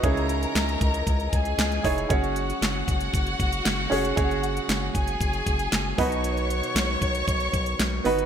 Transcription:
0.03 C#2 C#3 E3 G#3 D#4 E4 G#4 A#4 C#5 D#5 A#5, kick, closed hi-hat
0.17 closed hi-hat
0.29 closed hi-hat
0.43 closed hi-hat
0.55 C#2, snare, clap, closed hi-hat
0.69 closed hi-hat
0.81 C#2, kick, closed hi-hat
0.94 closed hi-hat
1.07 C#2, kick, closed hi-hat
1.20 closed hi-hat
1.33 C#2 G#4 G#5, kick, closed hi-hat
1.45 closed hi-hat
1.58 C#2, snare, clap, closed hi-hat
1.72 closed hi-hat
1.84 F1 D#4 E4 G#4 C#5, kick, snare, open hi-hat
1.98 closed hi-hat
2.09 F#1 C#3 F#3 C#4 F#4 G#4 C#5 F#5, kick, closed hi-hat
2.24 closed hi-hat
2.36 closed hi-hat
2.50 closed hi-hat
2.62 F#1, snare, clap, closed hi-hat
2.88 F#1, kick, closed hi-hat
3.01 closed hi-hat
3.13 F#1, kick, closed hi-hat
3.27 closed hi-hat
3.40 F#1, kick, closed hi-hat
3.53 closed hi-hat
3.65 F#1, snare, clap, closed hi-hat
3.90 F1 C#4 F#4 G#4 C#5, snare, open hi-hat
4.05 closed hi-hat
4.16 F#1 C#4 F#4 G#4 C#5, kick, closed hi-hat
4.31 closed hi-hat
4.43 closed hi-hat
4.57 closed hi-hat
4.68 F#1, snare, clap, closed hi-hat
4.95 F#1 G#4 G#5, kick, closed hi-hat
5.08 closed hi-hat
5.20 F#1, kick, closed hi-hat
5.33 closed hi-hat
5.47 F#1, kick, closed hi-hat
5.59 closed hi-hat
5.72 F#1, snare, clap, closed hi-hat
5.98 B1 B2 D#3 B3 D#4 F#4 B4 C#5 C#6, kick, snare, open hi-hat
6.12 closed hi-hat
6.24 closed hi-hat
6.37 closed hi-hat
6.50 closed hi-hat
6.63 closed hi-hat
6.75 B1, snare, clap, closed hi-hat
7.02 B1, kick, closed hi-hat
7.15 closed hi-hat
7.28 B1, kick, closed hi-hat
7.40 closed hi-hat
7.53 B1, kick, closed hi-hat
7.66 closed hi-hat
7.79 B1, snare, clap, closed hi-hat
8.04 G1 B3 D#4 F#4 B4, snare, open hi-hat
8.19 closed hi-hat

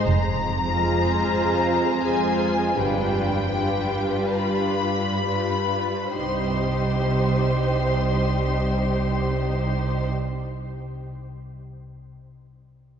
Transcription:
0.05 F1 F2 A#5
0.68 G#3 F4 G#4 C5
1.34 F2
2.02 G#3 F4 G#4 C5 G#5
2.76 G1 G2 G3 D4 F4 B4 G5
3.55 G3 D4 F4 B4
4.37 G2 B5
5.25 G3 D4 F4 B4
6.17 C2 C3 G3 D#4 G4 C5 C6

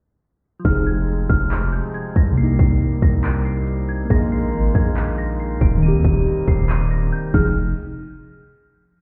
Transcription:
0.59 F3
0.65 F1 C3 F3 G#3 D#4 F6, kick, closed hi-hat
0.70 G#4
0.87 G#6, closed hi-hat
0.94 closed hi-hat
1.01 closed hi-hat
1.08 closed hi-hat
1.29 F1 F6, kick, closed hi-hat
1.51 clap, closed hi-hat
1.73 G6, closed hi-hat
1.94 G#6, closed hi-hat
2.16 C2 A#6, kick, closed hi-hat
2.32 C3
2.38 G3 A#3 C7, closed hi-hat
2.43 D#4
2.59 C2 C7, kick, open hi-hat
2.81 closed hi-hat
3.02 C2 A#6, kick, closed hi-hat
3.24 D7, clap, closed hi-hat
3.45 C7, closed hi-hat
3.67 closed hi-hat
3.89 G#6, closed hi-hat
3.96 closed hi-hat
4.03 A#3, closed hi-hat
4.10 A#1 D#3 G#3 F4 G#4 A#6, kick, closed hi-hat
4.16 D#5
4.32 C7, closed hi-hat
4.39 closed hi-hat
4.46 closed hi-hat
4.53 G#1, closed hi-hat
4.75 A#1 G#6, kick, closed hi-hat
4.97 clap, closed hi-hat
5.18 A#6, closed hi-hat
5.40 C7, closed hi-hat
5.61 D#1 D7, kick, closed hi-hat
5.77 D#3
5.83 C3 G3 C4 D#4 D#7, closed hi-hat
5.88 G4
5.94 D#2
6.04 D#1 D#7, kick, open hi-hat
6.26 closed hi-hat
6.48 D#1 C7, kick, closed hi-hat
6.69 D#7, clap, closed hi-hat
6.91 A#6, closed hi-hat
7.13 G6
7.34 F1 C3 F3 G#3 D#4 G#4 F6, kick, crash

